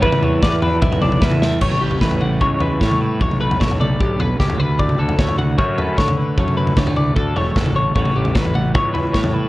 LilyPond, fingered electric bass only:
\new Staff \with { instrumentName = "Fingered electric bass" } { \clef bass \time 4/4 \key a \mixolydian \tempo 4 = 152 e,4 e,4 b,,4 e,4 | a,,8 a,,8 a,,4 cis,4 a,4 | b,,4 b,,4 b,,4 cis,8 d,8~ | d,8 d,8 d,4 fis,4 d4 |
fis,4 d,4 d,8 e,,8 fis,,8 a,,8 | a,,8 a,,8 a,,4 cis,4 a,4 | }